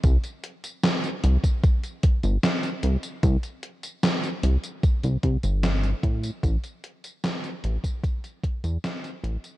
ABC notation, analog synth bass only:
X:1
M:4/4
L:1/16
Q:1/4=75
K:C
V:1 name="Analog synth bass" clef=bass
C,, z4 z C,, z4 G,,, z2 C,, z | C,, z4 z C,, z2 C,, C,, G,,,2 z A,, z | A,,, z4 z A,,, z4 E,, z2 A,,, z |]